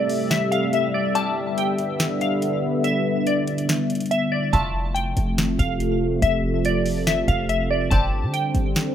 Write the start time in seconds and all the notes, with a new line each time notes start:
Already playing: C3 G3 A3 C5 D5 E5
0.09 open hi-hat
0.31 E5, snare, closed hi-hat
0.52 F5, closed hi-hat
0.73 E5, closed hi-hat
0.94 D5
1.15 D3 G3 B3 E4 D5 A5, closed hi-hat
1.58 G5, closed hi-hat
1.78 closed hi-hat
2.00 snare, closed hi-hat
2.21 F5, closed hi-hat
2.42 closed hi-hat
2.84 E5, closed hi-hat
3.27 D5, closed hi-hat
3.47 closed hi-hat, open hi-hat
3.58 closed hi-hat
3.69 snare, closed hi-hat
3.90 closed hi-hat
3.95 closed hi-hat
4.00 closed hi-hat
4.06 closed hi-hat
4.11 E5, closed hi-hat
4.32 D5
4.53 F1 C3 F3 A3 F4 E5 A5, kick, closed hi-hat
4.95 G5, closed hi-hat
5.17 F1, closed hi-hat
5.38 snare, closed hi-hat
5.59 F1 F5, kick, closed hi-hat
5.80 closed hi-hat
6.22 F1 E5, kick, closed hi-hat
6.65 D5, closed hi-hat
6.86 open hi-hat
7.07 E5, snare, closed hi-hat
7.28 F1 F5, kick, closed hi-hat
7.49 E5, closed hi-hat
7.71 D5
7.91 G1 D3 G3 C4 G4 D5 A5, kick, closed hi-hat
8.23 D3
8.34 G5, closed hi-hat
8.55 G1, closed hi-hat
8.76 snare, closed hi-hat